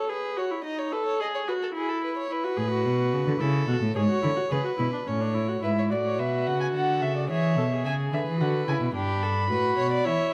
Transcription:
Already playing: A4
0.09 G#4 B4
0.37 F#4 C#5
0.51 E4
0.64 D#4 D#5
0.78 C#5
0.92 A4 B4
1.06 C#5
1.20 G#4 D#5
1.35 C#5
1.48 F#4 B4
1.62 A4
1.74 E4 G#4
1.89 A4
2.04 B4
2.17 C#5
2.30 E4 B4
2.44 F#4
2.57 A2 G#4
2.71 F#4
2.85 B2
3.13 C#3
3.26 D3
3.40 C#3 E4 A4
3.68 B2 F#4
3.82 A2
3.95 G#2 G#4 C#5
4.09 F#4
4.23 D3 E4
4.36 F#4
4.50 C#3 G#4 B4
4.64 F#4
4.78 B2 E4
4.92 D4
5.06 A2 C#4 C#5
5.20 D4
5.34 E4
5.48 F#4
5.62 G#2 E4 B4 E5
5.78 C#5
5.90 A2 F#4 D5
6.05 C#5
6.19 B2 B4 E5
6.47 C#3 F#5
6.61 G#5
6.74 D3 A4 F#5
7.01 C#3 E5
7.16 D5
7.29 E3 G#4 C#5 E5
7.57 B2 A4
7.71 G#4
7.85 C#3 E5 G#5
8.13 D3 B4 E5
8.27 E3
8.39 D3 F#4 F#5
8.67 C#3 E4 G#5
8.81 B2
8.94 G2 D4 G4 B5
9.22 A4
9.50 A2 F#4 B4
9.78 B2 C#5
9.92 D5
10.04 E3 E4 C#5 E5

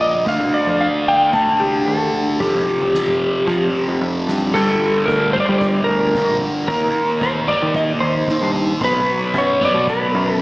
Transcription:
Already playing: A#2 F3 A#3
0.01 D#5
0.13 floor tom
0.26 D2 D3 A3 D4 F5, kick, floor tom
0.40 C2
0.54 D5
0.67 F2, floor tom
0.81 F5
1.07 G5, floor tom
1.33 D2 D3 A3 D4 A5, kick, floor tom
1.47 mid tom
1.60 C2 G4
1.86 D#2 A4
2.14 floor tom
2.27 floor tom
2.39 F2 C3 F3 G4, kick, floor tom
2.54 F2
2.68 floor tom
2.81 C2, floor tom
2.94 snare
3.08 floor tom, mid tom
3.21 floor tom
3.46 F2 C3 F3, kick, floor tom
3.74 floor tom
3.88 F2
4.01 F2
4.27 G2, snare
4.41 floor tom
4.54 G2 D3 G3 A4, kick, floor tom, crash
5.05 D2 A#4, kick
5.33 G2 D3 G3 C5, floor tom, mid tom
5.40 D5
5.46 G3 C5, floor tom
5.58 D5, kick, floor tom
5.84 A#4
5.88 D2
6.02 floor tom
6.15 G2 D3 G3, kick
6.29 A#1
6.41 floor tom
6.68 D#2 D#3 A#3 D#4 A#4, kick, floor tom
7.21 D#2 C5, kick
7.48 D#3 A#3 D#4 D5, floor tom, mid tom
7.61 D#3, floor tom
7.75 D#5, kick, floor tom
8.00 D#2 C5
8.15 floor tom
8.28 D#3 A#3 D#4, kick
8.42 G2
8.54 floor tom
8.81 B1 B2 F#3 B3 B4, kick, floor tom
9.34 F#2 C#5, kick
9.61 B2 F#3 B3, floor tom, mid tom
9.65 D5
9.74 B2, floor tom
9.87 B4, kick, floor tom
10.15 F#2
10.27 floor tom

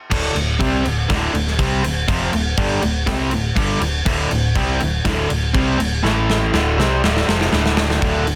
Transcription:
0.10 D1 D2 A2 D3, kick, crash
0.35 D1 D2 A2, crash
0.59 C2 C3 G3 C4, kick, crash
0.85 D1 D2 A2, crash
1.09 D1 D2 A2 D3, kick, snare, crash
1.33 D1 D2 A2, crash
1.47 snare
1.58 C2 C3 G3 C4, kick, crash
1.83 D1 D2 A2, crash
2.08 F1 F2 C3 F3, kick, crash
2.33 D1 D2 A2, crash
2.58 G1 G2 D3 G3, kick, crash
2.82 D1 D2 A2, crash
3.06 C2 C3 G3 C4, kick, snare, crash
3.31 D1 D2 A2, crash
3.56 G1 G2 D3 G3, kick, crash
3.80 D1 D2 A2, crash
4.05 D1 D2 A2 D3, kick, crash
4.30 D1 D2 A2, crash
4.55 C2 C3 G3 C4, kick, crash
4.80 D1 D2 A2, crash
5.05 D1 D2 A2 D3, kick, snare, crash
5.30 D1 D2 A2, crash
5.54 C2 C3 G3 C4, kick, crash
5.79 D1 D2 A2, crash
6.03 A1 A2 E3 A3, snare
6.30 snare
6.53 D1 D2 A2 D3, snare
6.77 C2 C3 G3 C4, snare
7.03 D1 D2 A2 D3, snare
7.17 snare
7.28 F1 F2 C3 F3, snare
7.41 snare
7.52 D1 D2 A2 D3, snare
7.66 snare
7.77 snare
7.90 snare
8.01 D1 D2 A2 D3, kick, crash
8.27 D2 A2, crash

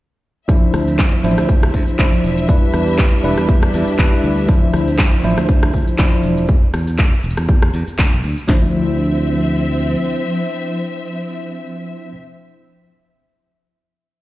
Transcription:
0.48 F3 C4 D4 E4 C5 E5, kick, closed hi-hat, shaker
0.63 shaker
0.74 D2, cross-stick, open hi-hat
0.88 closed hi-hat, shaker
0.99 C2, kick, clap, closed hi-hat, shaker
1.13 shaker
1.23 A1 F3 D4 E4 C5, open hi-hat
1.31 closed hi-hat
1.38 D2, cross-stick, closed hi-hat, shaker
1.49 kick, closed hi-hat, shaker
1.63 cross-stick, shaker
1.74 D2, kick, open hi-hat
1.88 muted fingered electric bass stroke, closed hi-hat, shaker
1.99 D2 F3 D4 E4 C5, kick, clap, closed hi-hat, shaker
2.13 shaker
2.24 E1, open hi-hat
2.38 closed hi-hat, shaker
2.48 G3 D4 E4 G4 B4, kick, closed hi-hat, shaker
2.63 shaker
2.74 E2, cross-stick, open hi-hat
2.88 closed hi-hat, shaker
2.99 D2, kick, clap, closed hi-hat, shaker
3.13 open hi-hat, shaker
3.23 E1 G3 D4 E4 B4, open hi-hat
3.31 closed hi-hat
3.38 E2, cross-stick, closed hi-hat, shaker
3.49 kick, closed hi-hat, shaker
3.63 cross-stick, shaker
3.74 E2, open hi-hat
3.88 muted fingered electric bass stroke, closed hi-hat, shaker
3.99 E2 G3 D4 E4 B4, kick, clap, closed hi-hat, shaker
4.13 shaker
4.24 D2, open hi-hat
4.38 closed hi-hat, shaker
4.48 F3 C4 D4 E4 C5, kick, closed hi-hat, shaker
4.63 shaker
4.74 D2, cross-stick, open hi-hat
4.88 closed hi-hat, shaker
4.99 C2, kick, clap, closed hi-hat, shaker
5.13 shaker
5.23 A1 F3 D4 E4 C5, open hi-hat
5.31 closed hi-hat
5.38 D2, cross-stick, closed hi-hat, shaker
5.49 kick, closed hi-hat, shaker
5.63 cross-stick, shaker
5.74 D2, kick, open hi-hat
5.88 muted fingered electric bass stroke, closed hi-hat, shaker
5.98 D2 F3 D4 E4 C5, kick, clap, closed hi-hat, shaker
6.13 shaker
6.23 E1, open hi-hat
6.38 closed hi-hat, shaker
6.49 kick, closed hi-hat, shaker
6.63 shaker
6.74 E2, cross-stick, open hi-hat
6.87 closed hi-hat, shaker
6.99 D2, kick, clap, closed hi-hat, shaker
7.12 open hi-hat, shaker
7.23 E1, open hi-hat
7.30 closed hi-hat
7.37 E2, cross-stick, closed hi-hat, shaker
7.49 kick, closed hi-hat, shaker
7.62 cross-stick, shaker
7.73 E2, open hi-hat
7.88 muted fingered electric bass stroke, closed hi-hat, shaker
7.99 D2, kick, clap, closed hi-hat, shaker
8.13 B1, shaker
8.24 D2, open hi-hat
8.38 closed hi-hat, shaker
8.48 D2 F3 C4 D4 E4 C5 E5, kick, snare

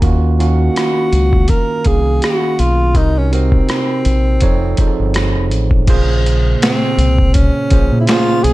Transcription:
0.02 D#2 D#3 A#3 C#4 F4 F#4, kick, closed hi-hat
0.39 D#3 A#3 C#4 F#4 F5, closed hi-hat
0.76 cross-stick, closed hi-hat
1.13 C#2, closed hi-hat
1.33 kick
1.48 A#4, kick, closed hi-hat
1.85 C2 D#3 A#3 C#4 G#4 F5, kick, closed hi-hat
2.22 F#4, cross-stick, closed hi-hat
2.59 B1 F4, closed hi-hat
2.95 C2 C3 C4 D#4 F#4 A#4, kick, closed hi-hat
3.18 C#4
3.32 C3 C4 D#4 F#4 A#4, closed hi-hat
3.52 kick
3.69 cross-stick, closed hi-hat
4.05 A#1, closed hi-hat
4.41 F1 F3 C4 D#4 A4 C#5, kick, closed hi-hat
4.77 F3 C4 D#4 G#4 C5, kick, closed hi-hat
4.87 A4
4.99 G1
5.14 cross-stick, closed hi-hat
5.35 F1
5.51 A1, closed hi-hat
5.71 kick
5.87 A#1 A#2 C#3 A#3 G#4 C5, kick, closed hi-hat, crash
6.26 closed hi-hat
6.62 C4, finger snap, snare, closed hi-hat
6.98 C2, closed hi-hat
7.18 kick
7.34 C#4, kick, closed hi-hat
7.70 A#1 A#2 A#3 C#4 G#4 C5, kick, closed hi-hat
7.92 A#2
8.00 E4
8.07 A#2 A#3 C#4 F4 G#4 C5, finger snap, snare, closed hi-hat
8.43 B1 G#4, closed hi-hat

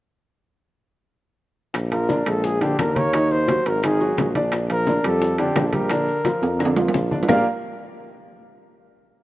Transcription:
1.74 A#1, high bongo, high conga, high timbale, claves, maracas
1.92 F3 F4 A#4, high conga, high timbale, maracas
2.09 D4 D5, high bongo, high conga, maracas
2.26 A#1 G#3 G#4 A4, high conga, high timbale, claves, maracas
2.44 G#4, high bongo, high conga, maracas
2.61 D3 D4 G4, high conga, high timbale, maracas
2.79 D#2 A#4, high bongo, low bongo, high conga, high timbale, claves, maracas
2.95 A#3 A#4 C#5, high conga, high timbale, maracas
3.13 D#3 D#4, high bongo, high conga, high timbale, claves, maracas
3.31 C5, high bongo, high conga, maracas
3.48 F#3 F#4, high bongo, high conga, high timbale, maracas
3.65 G#1 A#4, high conga, high timbale, maracas
3.83 D#3 D#4 G#4, high bongo, high conga, high timbale, claves, maracas
4.01 F#3 F#4, high bongo, high conga, maracas
4.17 A#1, high bongo, low bongo, high conga, high timbale, low timbale, maracas
4.35 D4 D5, high bongo, high conga, high timbale, maracas
4.52 high bongo, high conga, high timbale, claves, maracas
4.70 F3 F4 A#4, high conga, high timbale, maracas
4.87 D4 D5, high bongo, high conga, maracas
5.03 F2 G3 G4 A4, high conga, high timbale, claves, maracas
5.22 high bongo, high conga, maracas
5.38 D3 D4 G4, high conga, high timbale, maracas
5.55 A#1, high bongo, low bongo, high conga, high timbale, low timbale, claves, maracas
5.68 A4
5.73 G3 G4 A#4, high conga, high timbale, maracas
5.90 D3 D4, high bongo, high conga, high timbale, claves, maracas
6.08 high bongo, high conga, maracas
6.25 F3 F4, high bongo, high conga, high timbale, maracas
6.42 F2, high conga, high timbale, maracas
6.59 D3 D4, high bongo, high conga, claves, maracas
6.65 high timbale
6.76 F3 F4, high bongo, high conga, low timbale, maracas
6.88 low timbale
6.94 A#1, high bongo, low bongo, high conga, maracas
7.11 D4 D5, high bongo, high conga, maracas
7.23 low timbale
7.28 A#1 A#3 F4 G4 A#4 D5 F5, low bongo, low conga, low timbale, claves, maracas

